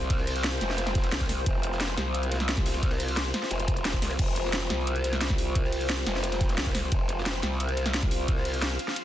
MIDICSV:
0, 0, Header, 1, 4, 480
1, 0, Start_track
1, 0, Tempo, 340909
1, 142, Time_signature, 4, 2, 24, 8
1, 12731, End_track
2, 0, Start_track
2, 0, Title_t, "Ambient pad"
2, 0, Program_c, 0, 92
2, 0, Note_on_c, 0, 65, 89
2, 0, Note_on_c, 0, 72, 81
2, 0, Note_on_c, 0, 79, 96
2, 2046, Note_off_c, 0, 79, 0
2, 2060, Note_on_c, 0, 84, 95
2, 5886, Note_off_c, 0, 84, 0
2, 5901, Note_on_c, 0, 79, 96
2, 9727, Note_off_c, 0, 79, 0
2, 9743, Note_on_c, 0, 77, 98
2, 12731, Note_off_c, 0, 65, 0
2, 12731, Note_off_c, 0, 72, 0
2, 12731, Note_off_c, 0, 77, 0
2, 12731, End_track
3, 0, Start_track
3, 0, Title_t, "Wobble bass"
3, 0, Program_c, 1, 39
3, 0, Note_on_c, 1, 36, 96
3, 842, Note_off_c, 1, 36, 0
3, 861, Note_on_c, 1, 29, 95
3, 1562, Note_off_c, 1, 29, 0
3, 1580, Note_on_c, 1, 36, 98
3, 2042, Note_off_c, 1, 36, 0
3, 2060, Note_on_c, 1, 29, 94
3, 2762, Note_off_c, 1, 29, 0
3, 2780, Note_on_c, 1, 36, 97
3, 4682, Note_off_c, 1, 36, 0
3, 4942, Note_on_c, 1, 29, 96
3, 5643, Note_off_c, 1, 29, 0
3, 5661, Note_on_c, 1, 36, 100
3, 5882, Note_off_c, 1, 36, 0
3, 5901, Note_on_c, 1, 29, 100
3, 6602, Note_off_c, 1, 29, 0
3, 6621, Note_on_c, 1, 36, 101
3, 8522, Note_off_c, 1, 36, 0
3, 8542, Note_on_c, 1, 29, 96
3, 9243, Note_off_c, 1, 29, 0
3, 9262, Note_on_c, 1, 36, 97
3, 9723, Note_off_c, 1, 36, 0
3, 9742, Note_on_c, 1, 29, 101
3, 10443, Note_off_c, 1, 29, 0
3, 10461, Note_on_c, 1, 36, 100
3, 12362, Note_off_c, 1, 36, 0
3, 12731, End_track
4, 0, Start_track
4, 0, Title_t, "Drums"
4, 29, Note_on_c, 9, 38, 36
4, 141, Note_on_c, 9, 36, 116
4, 141, Note_on_c, 9, 42, 89
4, 145, Note_on_c, 9, 51, 99
4, 170, Note_off_c, 9, 38, 0
4, 252, Note_on_c, 9, 38, 60
4, 282, Note_off_c, 9, 36, 0
4, 282, Note_off_c, 9, 42, 0
4, 286, Note_off_c, 9, 51, 0
4, 383, Note_on_c, 9, 42, 64
4, 388, Note_on_c, 9, 46, 87
4, 392, Note_off_c, 9, 38, 0
4, 502, Note_off_c, 9, 42, 0
4, 502, Note_on_c, 9, 42, 36
4, 529, Note_off_c, 9, 46, 0
4, 614, Note_on_c, 9, 51, 91
4, 619, Note_on_c, 9, 38, 127
4, 622, Note_off_c, 9, 38, 0
4, 622, Note_off_c, 9, 42, 0
4, 622, Note_on_c, 9, 38, 118
4, 622, Note_on_c, 9, 42, 94
4, 749, Note_off_c, 9, 51, 0
4, 749, Note_on_c, 9, 51, 47
4, 762, Note_off_c, 9, 38, 0
4, 762, Note_off_c, 9, 42, 0
4, 861, Note_on_c, 9, 40, 54
4, 861, Note_on_c, 9, 42, 68
4, 871, Note_off_c, 9, 51, 0
4, 871, Note_on_c, 9, 51, 68
4, 981, Note_on_c, 9, 38, 37
4, 1002, Note_off_c, 9, 40, 0
4, 1002, Note_off_c, 9, 42, 0
4, 1012, Note_off_c, 9, 51, 0
4, 1096, Note_off_c, 9, 38, 0
4, 1096, Note_on_c, 9, 38, 107
4, 1099, Note_on_c, 9, 42, 93
4, 1102, Note_on_c, 9, 51, 81
4, 1215, Note_off_c, 9, 38, 0
4, 1215, Note_on_c, 9, 38, 98
4, 1218, Note_off_c, 9, 51, 0
4, 1218, Note_on_c, 9, 51, 77
4, 1220, Note_off_c, 9, 42, 0
4, 1220, Note_on_c, 9, 40, 32
4, 1220, Note_on_c, 9, 42, 35
4, 1339, Note_off_c, 9, 42, 0
4, 1339, Note_off_c, 9, 51, 0
4, 1339, Note_on_c, 9, 42, 66
4, 1339, Note_on_c, 9, 51, 76
4, 1340, Note_off_c, 9, 38, 0
4, 1340, Note_on_c, 9, 38, 103
4, 1341, Note_on_c, 9, 36, 108
4, 1361, Note_off_c, 9, 40, 0
4, 1450, Note_off_c, 9, 38, 0
4, 1450, Note_on_c, 9, 38, 101
4, 1456, Note_off_c, 9, 51, 0
4, 1456, Note_on_c, 9, 51, 76
4, 1460, Note_off_c, 9, 42, 0
4, 1460, Note_on_c, 9, 42, 36
4, 1481, Note_off_c, 9, 36, 0
4, 1576, Note_off_c, 9, 38, 0
4, 1576, Note_on_c, 9, 38, 96
4, 1579, Note_off_c, 9, 38, 0
4, 1579, Note_off_c, 9, 42, 0
4, 1579, Note_on_c, 9, 38, 118
4, 1579, Note_on_c, 9, 42, 94
4, 1584, Note_off_c, 9, 51, 0
4, 1584, Note_on_c, 9, 51, 73
4, 1700, Note_off_c, 9, 51, 0
4, 1700, Note_on_c, 9, 51, 81
4, 1701, Note_on_c, 9, 36, 61
4, 1704, Note_off_c, 9, 38, 0
4, 1704, Note_on_c, 9, 38, 107
4, 1720, Note_off_c, 9, 42, 0
4, 1814, Note_off_c, 9, 51, 0
4, 1814, Note_on_c, 9, 51, 65
4, 1820, Note_on_c, 9, 40, 47
4, 1820, Note_on_c, 9, 46, 85
4, 1842, Note_off_c, 9, 36, 0
4, 1845, Note_off_c, 9, 38, 0
4, 1926, Note_on_c, 9, 38, 53
4, 1955, Note_off_c, 9, 51, 0
4, 1960, Note_off_c, 9, 40, 0
4, 1960, Note_off_c, 9, 46, 0
4, 2058, Note_on_c, 9, 51, 86
4, 2060, Note_on_c, 9, 42, 92
4, 2061, Note_on_c, 9, 36, 114
4, 2067, Note_off_c, 9, 38, 0
4, 2199, Note_off_c, 9, 51, 0
4, 2201, Note_off_c, 9, 36, 0
4, 2201, Note_off_c, 9, 42, 0
4, 2300, Note_on_c, 9, 42, 71
4, 2304, Note_on_c, 9, 51, 69
4, 2418, Note_on_c, 9, 38, 52
4, 2441, Note_off_c, 9, 42, 0
4, 2445, Note_off_c, 9, 51, 0
4, 2541, Note_off_c, 9, 38, 0
4, 2541, Note_on_c, 9, 38, 115
4, 2541, Note_on_c, 9, 42, 97
4, 2548, Note_on_c, 9, 51, 94
4, 2682, Note_off_c, 9, 38, 0
4, 2682, Note_off_c, 9, 42, 0
4, 2689, Note_off_c, 9, 51, 0
4, 2780, Note_on_c, 9, 40, 54
4, 2780, Note_on_c, 9, 42, 69
4, 2780, Note_on_c, 9, 51, 85
4, 2921, Note_off_c, 9, 40, 0
4, 2921, Note_off_c, 9, 42, 0
4, 2921, Note_off_c, 9, 51, 0
4, 3009, Note_on_c, 9, 38, 37
4, 3016, Note_on_c, 9, 51, 57
4, 3021, Note_on_c, 9, 42, 98
4, 3141, Note_off_c, 9, 42, 0
4, 3141, Note_on_c, 9, 42, 37
4, 3150, Note_off_c, 9, 38, 0
4, 3157, Note_off_c, 9, 51, 0
4, 3260, Note_off_c, 9, 42, 0
4, 3260, Note_on_c, 9, 42, 67
4, 3262, Note_on_c, 9, 51, 84
4, 3274, Note_on_c, 9, 38, 105
4, 3381, Note_off_c, 9, 42, 0
4, 3381, Note_on_c, 9, 40, 54
4, 3381, Note_on_c, 9, 42, 38
4, 3403, Note_off_c, 9, 51, 0
4, 3415, Note_off_c, 9, 38, 0
4, 3492, Note_on_c, 9, 38, 115
4, 3501, Note_off_c, 9, 38, 0
4, 3501, Note_off_c, 9, 42, 0
4, 3501, Note_on_c, 9, 38, 116
4, 3501, Note_on_c, 9, 42, 99
4, 3504, Note_on_c, 9, 51, 96
4, 3521, Note_off_c, 9, 40, 0
4, 3621, Note_on_c, 9, 36, 106
4, 3622, Note_on_c, 9, 40, 46
4, 3642, Note_off_c, 9, 38, 0
4, 3642, Note_off_c, 9, 42, 0
4, 3644, Note_off_c, 9, 51, 0
4, 3742, Note_on_c, 9, 46, 82
4, 3743, Note_on_c, 9, 51, 75
4, 3748, Note_on_c, 9, 38, 103
4, 3762, Note_off_c, 9, 36, 0
4, 3762, Note_off_c, 9, 40, 0
4, 3859, Note_off_c, 9, 51, 0
4, 3859, Note_on_c, 9, 51, 76
4, 3866, Note_off_c, 9, 38, 0
4, 3866, Note_on_c, 9, 38, 107
4, 3883, Note_off_c, 9, 46, 0
4, 3977, Note_off_c, 9, 38, 0
4, 3977, Note_on_c, 9, 38, 100
4, 3981, Note_on_c, 9, 36, 115
4, 3982, Note_on_c, 9, 42, 99
4, 3988, Note_off_c, 9, 51, 0
4, 3988, Note_on_c, 9, 51, 79
4, 4095, Note_off_c, 9, 51, 0
4, 4095, Note_on_c, 9, 51, 87
4, 4097, Note_off_c, 9, 38, 0
4, 4097, Note_on_c, 9, 38, 115
4, 4122, Note_off_c, 9, 36, 0
4, 4122, Note_off_c, 9, 42, 0
4, 4222, Note_on_c, 9, 42, 70
4, 4225, Note_on_c, 9, 46, 90
4, 4236, Note_off_c, 9, 51, 0
4, 4238, Note_off_c, 9, 38, 0
4, 4343, Note_off_c, 9, 42, 0
4, 4343, Note_on_c, 9, 42, 39
4, 4365, Note_off_c, 9, 46, 0
4, 4453, Note_on_c, 9, 38, 127
4, 4457, Note_on_c, 9, 51, 100
4, 4463, Note_off_c, 9, 38, 0
4, 4463, Note_off_c, 9, 42, 0
4, 4463, Note_on_c, 9, 38, 118
4, 4463, Note_on_c, 9, 42, 102
4, 4576, Note_off_c, 9, 51, 0
4, 4576, Note_on_c, 9, 51, 46
4, 4604, Note_off_c, 9, 38, 0
4, 4604, Note_off_c, 9, 42, 0
4, 4699, Note_on_c, 9, 38, 108
4, 4701, Note_off_c, 9, 51, 0
4, 4701, Note_on_c, 9, 51, 77
4, 4703, Note_on_c, 9, 40, 57
4, 4703, Note_on_c, 9, 42, 71
4, 4818, Note_off_c, 9, 51, 0
4, 4818, Note_on_c, 9, 51, 82
4, 4824, Note_off_c, 9, 38, 0
4, 4824, Note_on_c, 9, 38, 37
4, 4825, Note_off_c, 9, 38, 0
4, 4825, Note_on_c, 9, 38, 123
4, 4844, Note_off_c, 9, 40, 0
4, 4844, Note_off_c, 9, 42, 0
4, 4934, Note_off_c, 9, 51, 0
4, 4934, Note_on_c, 9, 51, 96
4, 4942, Note_on_c, 9, 42, 98
4, 4965, Note_off_c, 9, 38, 0
4, 5062, Note_off_c, 9, 42, 0
4, 5062, Note_on_c, 9, 42, 38
4, 5075, Note_off_c, 9, 51, 0
4, 5176, Note_on_c, 9, 51, 88
4, 5181, Note_on_c, 9, 36, 105
4, 5183, Note_off_c, 9, 42, 0
4, 5183, Note_on_c, 9, 42, 69
4, 5303, Note_off_c, 9, 42, 0
4, 5303, Note_on_c, 9, 42, 39
4, 5317, Note_off_c, 9, 51, 0
4, 5322, Note_off_c, 9, 36, 0
4, 5421, Note_off_c, 9, 42, 0
4, 5421, Note_on_c, 9, 38, 117
4, 5421, Note_on_c, 9, 42, 101
4, 5425, Note_on_c, 9, 51, 92
4, 5426, Note_off_c, 9, 38, 0
4, 5426, Note_on_c, 9, 38, 112
4, 5541, Note_on_c, 9, 36, 60
4, 5562, Note_off_c, 9, 42, 0
4, 5566, Note_off_c, 9, 38, 0
4, 5566, Note_off_c, 9, 51, 0
4, 5659, Note_on_c, 9, 38, 97
4, 5661, Note_on_c, 9, 40, 49
4, 5661, Note_on_c, 9, 46, 78
4, 5665, Note_on_c, 9, 51, 83
4, 5682, Note_off_c, 9, 36, 0
4, 5779, Note_off_c, 9, 51, 0
4, 5779, Note_on_c, 9, 51, 81
4, 5781, Note_off_c, 9, 38, 0
4, 5781, Note_on_c, 9, 38, 101
4, 5802, Note_off_c, 9, 40, 0
4, 5802, Note_off_c, 9, 46, 0
4, 5897, Note_off_c, 9, 51, 0
4, 5897, Note_on_c, 9, 51, 84
4, 5901, Note_on_c, 9, 36, 118
4, 5901, Note_on_c, 9, 42, 97
4, 5901, Note_on_c, 9, 49, 74
4, 5921, Note_off_c, 9, 38, 0
4, 6037, Note_off_c, 9, 51, 0
4, 6041, Note_off_c, 9, 42, 0
4, 6041, Note_off_c, 9, 49, 0
4, 6042, Note_off_c, 9, 36, 0
4, 6136, Note_on_c, 9, 51, 66
4, 6140, Note_on_c, 9, 42, 70
4, 6263, Note_on_c, 9, 38, 60
4, 6277, Note_off_c, 9, 51, 0
4, 6281, Note_off_c, 9, 42, 0
4, 6380, Note_off_c, 9, 38, 0
4, 6380, Note_on_c, 9, 38, 123
4, 6380, Note_on_c, 9, 42, 99
4, 6384, Note_off_c, 9, 38, 0
4, 6384, Note_on_c, 9, 38, 110
4, 6385, Note_on_c, 9, 51, 96
4, 6521, Note_off_c, 9, 42, 0
4, 6525, Note_off_c, 9, 38, 0
4, 6525, Note_off_c, 9, 51, 0
4, 6619, Note_on_c, 9, 40, 57
4, 6619, Note_on_c, 9, 42, 70
4, 6630, Note_on_c, 9, 51, 67
4, 6747, Note_on_c, 9, 38, 42
4, 6760, Note_off_c, 9, 40, 0
4, 6760, Note_off_c, 9, 42, 0
4, 6771, Note_off_c, 9, 51, 0
4, 6858, Note_on_c, 9, 42, 101
4, 6860, Note_on_c, 9, 51, 88
4, 6888, Note_off_c, 9, 38, 0
4, 6979, Note_off_c, 9, 42, 0
4, 6979, Note_on_c, 9, 42, 37
4, 7001, Note_off_c, 9, 51, 0
4, 7099, Note_off_c, 9, 42, 0
4, 7099, Note_on_c, 9, 42, 71
4, 7104, Note_on_c, 9, 38, 43
4, 7109, Note_on_c, 9, 51, 74
4, 7219, Note_off_c, 9, 42, 0
4, 7219, Note_on_c, 9, 40, 58
4, 7219, Note_on_c, 9, 42, 37
4, 7244, Note_off_c, 9, 38, 0
4, 7249, Note_off_c, 9, 51, 0
4, 7334, Note_on_c, 9, 51, 88
4, 7340, Note_off_c, 9, 42, 0
4, 7340, Note_on_c, 9, 38, 122
4, 7340, Note_on_c, 9, 42, 95
4, 7341, Note_off_c, 9, 38, 0
4, 7341, Note_on_c, 9, 38, 119
4, 7360, Note_off_c, 9, 40, 0
4, 7459, Note_on_c, 9, 40, 51
4, 7461, Note_on_c, 9, 36, 106
4, 7475, Note_off_c, 9, 51, 0
4, 7480, Note_off_c, 9, 42, 0
4, 7482, Note_off_c, 9, 38, 0
4, 7580, Note_on_c, 9, 46, 76
4, 7584, Note_on_c, 9, 51, 68
4, 7600, Note_off_c, 9, 40, 0
4, 7602, Note_off_c, 9, 36, 0
4, 7703, Note_on_c, 9, 38, 40
4, 7720, Note_off_c, 9, 46, 0
4, 7725, Note_off_c, 9, 51, 0
4, 7820, Note_on_c, 9, 42, 92
4, 7821, Note_on_c, 9, 36, 127
4, 7830, Note_on_c, 9, 51, 89
4, 7844, Note_off_c, 9, 38, 0
4, 7943, Note_on_c, 9, 38, 52
4, 7961, Note_off_c, 9, 42, 0
4, 7962, Note_off_c, 9, 36, 0
4, 7970, Note_off_c, 9, 51, 0
4, 8060, Note_on_c, 9, 42, 67
4, 8060, Note_on_c, 9, 46, 87
4, 8084, Note_off_c, 9, 38, 0
4, 8181, Note_off_c, 9, 42, 0
4, 8181, Note_on_c, 9, 42, 38
4, 8201, Note_off_c, 9, 46, 0
4, 8293, Note_on_c, 9, 51, 93
4, 8299, Note_off_c, 9, 42, 0
4, 8299, Note_on_c, 9, 38, 124
4, 8299, Note_on_c, 9, 42, 94
4, 8300, Note_off_c, 9, 38, 0
4, 8300, Note_on_c, 9, 38, 111
4, 8419, Note_off_c, 9, 51, 0
4, 8419, Note_on_c, 9, 51, 44
4, 8440, Note_off_c, 9, 42, 0
4, 8441, Note_off_c, 9, 38, 0
4, 8539, Note_on_c, 9, 40, 60
4, 8539, Note_on_c, 9, 42, 67
4, 8540, Note_off_c, 9, 51, 0
4, 8540, Note_on_c, 9, 51, 77
4, 8661, Note_on_c, 9, 38, 40
4, 8680, Note_off_c, 9, 40, 0
4, 8680, Note_off_c, 9, 42, 0
4, 8681, Note_off_c, 9, 51, 0
4, 8773, Note_off_c, 9, 38, 0
4, 8773, Note_on_c, 9, 38, 103
4, 8780, Note_on_c, 9, 51, 85
4, 8781, Note_on_c, 9, 42, 95
4, 8898, Note_off_c, 9, 51, 0
4, 8898, Note_on_c, 9, 51, 85
4, 8900, Note_off_c, 9, 38, 0
4, 8900, Note_on_c, 9, 38, 103
4, 8902, Note_off_c, 9, 42, 0
4, 8902, Note_on_c, 9, 40, 34
4, 8902, Note_on_c, 9, 42, 37
4, 9016, Note_off_c, 9, 38, 0
4, 9016, Note_on_c, 9, 38, 108
4, 9022, Note_off_c, 9, 42, 0
4, 9022, Note_on_c, 9, 36, 113
4, 9022, Note_on_c, 9, 42, 68
4, 9032, Note_off_c, 9, 51, 0
4, 9032, Note_on_c, 9, 51, 77
4, 9042, Note_off_c, 9, 40, 0
4, 9141, Note_off_c, 9, 42, 0
4, 9141, Note_on_c, 9, 42, 36
4, 9142, Note_off_c, 9, 38, 0
4, 9142, Note_off_c, 9, 51, 0
4, 9142, Note_on_c, 9, 38, 111
4, 9142, Note_on_c, 9, 51, 80
4, 9162, Note_off_c, 9, 36, 0
4, 9257, Note_off_c, 9, 51, 0
4, 9257, Note_on_c, 9, 51, 83
4, 9259, Note_off_c, 9, 38, 0
4, 9259, Note_on_c, 9, 38, 102
4, 9260, Note_off_c, 9, 38, 0
4, 9260, Note_off_c, 9, 42, 0
4, 9260, Note_on_c, 9, 38, 127
4, 9260, Note_on_c, 9, 42, 93
4, 9378, Note_off_c, 9, 51, 0
4, 9378, Note_on_c, 9, 51, 85
4, 9382, Note_on_c, 9, 36, 65
4, 9385, Note_off_c, 9, 38, 0
4, 9385, Note_on_c, 9, 38, 105
4, 9401, Note_off_c, 9, 42, 0
4, 9495, Note_off_c, 9, 51, 0
4, 9495, Note_on_c, 9, 51, 73
4, 9500, Note_on_c, 9, 40, 52
4, 9500, Note_on_c, 9, 46, 76
4, 9523, Note_off_c, 9, 36, 0
4, 9526, Note_off_c, 9, 38, 0
4, 9617, Note_on_c, 9, 38, 59
4, 9636, Note_off_c, 9, 51, 0
4, 9641, Note_off_c, 9, 40, 0
4, 9641, Note_off_c, 9, 46, 0
4, 9737, Note_on_c, 9, 51, 88
4, 9740, Note_on_c, 9, 42, 89
4, 9742, Note_on_c, 9, 36, 126
4, 9758, Note_off_c, 9, 38, 0
4, 9878, Note_off_c, 9, 51, 0
4, 9881, Note_off_c, 9, 42, 0
4, 9883, Note_off_c, 9, 36, 0
4, 9980, Note_on_c, 9, 51, 65
4, 9982, Note_on_c, 9, 42, 66
4, 10107, Note_on_c, 9, 38, 56
4, 10121, Note_off_c, 9, 51, 0
4, 10122, Note_off_c, 9, 42, 0
4, 10221, Note_off_c, 9, 38, 0
4, 10221, Note_on_c, 9, 38, 109
4, 10223, Note_off_c, 9, 38, 0
4, 10223, Note_on_c, 9, 38, 127
4, 10223, Note_on_c, 9, 42, 94
4, 10225, Note_on_c, 9, 51, 84
4, 10363, Note_off_c, 9, 38, 0
4, 10363, Note_off_c, 9, 42, 0
4, 10366, Note_off_c, 9, 51, 0
4, 10451, Note_on_c, 9, 51, 71
4, 10462, Note_on_c, 9, 40, 58
4, 10462, Note_on_c, 9, 42, 66
4, 10588, Note_on_c, 9, 38, 38
4, 10592, Note_off_c, 9, 51, 0
4, 10603, Note_off_c, 9, 40, 0
4, 10603, Note_off_c, 9, 42, 0
4, 10703, Note_on_c, 9, 42, 94
4, 10705, Note_on_c, 9, 51, 89
4, 10729, Note_off_c, 9, 38, 0
4, 10823, Note_off_c, 9, 42, 0
4, 10823, Note_on_c, 9, 42, 36
4, 10845, Note_off_c, 9, 51, 0
4, 10939, Note_on_c, 9, 38, 45
4, 10942, Note_off_c, 9, 42, 0
4, 10942, Note_on_c, 9, 42, 67
4, 10942, Note_on_c, 9, 51, 69
4, 11062, Note_off_c, 9, 42, 0
4, 11062, Note_on_c, 9, 40, 56
4, 11062, Note_on_c, 9, 42, 36
4, 11080, Note_off_c, 9, 38, 0
4, 11083, Note_off_c, 9, 51, 0
4, 11176, Note_on_c, 9, 51, 89
4, 11180, Note_on_c, 9, 38, 107
4, 11182, Note_off_c, 9, 38, 0
4, 11182, Note_off_c, 9, 42, 0
4, 11182, Note_on_c, 9, 38, 127
4, 11182, Note_on_c, 9, 42, 91
4, 11203, Note_off_c, 9, 40, 0
4, 11301, Note_on_c, 9, 40, 50
4, 11302, Note_on_c, 9, 36, 117
4, 11317, Note_off_c, 9, 51, 0
4, 11323, Note_off_c, 9, 38, 0
4, 11323, Note_off_c, 9, 42, 0
4, 11421, Note_on_c, 9, 46, 79
4, 11425, Note_on_c, 9, 51, 75
4, 11442, Note_off_c, 9, 40, 0
4, 11443, Note_off_c, 9, 36, 0
4, 11548, Note_on_c, 9, 38, 41
4, 11562, Note_off_c, 9, 46, 0
4, 11566, Note_off_c, 9, 51, 0
4, 11661, Note_on_c, 9, 42, 88
4, 11662, Note_on_c, 9, 36, 127
4, 11662, Note_on_c, 9, 51, 94
4, 11689, Note_off_c, 9, 38, 0
4, 11786, Note_on_c, 9, 38, 54
4, 11802, Note_off_c, 9, 42, 0
4, 11803, Note_off_c, 9, 36, 0
4, 11803, Note_off_c, 9, 51, 0
4, 11900, Note_on_c, 9, 42, 62
4, 11910, Note_on_c, 9, 46, 83
4, 11927, Note_off_c, 9, 38, 0
4, 12020, Note_off_c, 9, 42, 0
4, 12020, Note_on_c, 9, 42, 36
4, 12051, Note_off_c, 9, 46, 0
4, 12140, Note_off_c, 9, 42, 0
4, 12140, Note_on_c, 9, 38, 127
4, 12140, Note_on_c, 9, 42, 88
4, 12141, Note_on_c, 9, 51, 95
4, 12252, Note_off_c, 9, 51, 0
4, 12252, Note_on_c, 9, 51, 46
4, 12281, Note_off_c, 9, 38, 0
4, 12281, Note_off_c, 9, 42, 0
4, 12381, Note_on_c, 9, 42, 65
4, 12386, Note_off_c, 9, 51, 0
4, 12386, Note_on_c, 9, 51, 64
4, 12501, Note_on_c, 9, 38, 41
4, 12521, Note_off_c, 9, 42, 0
4, 12527, Note_off_c, 9, 51, 0
4, 12618, Note_on_c, 9, 51, 83
4, 12620, Note_on_c, 9, 42, 91
4, 12642, Note_off_c, 9, 38, 0
4, 12731, Note_off_c, 9, 42, 0
4, 12731, Note_off_c, 9, 51, 0
4, 12731, End_track
0, 0, End_of_file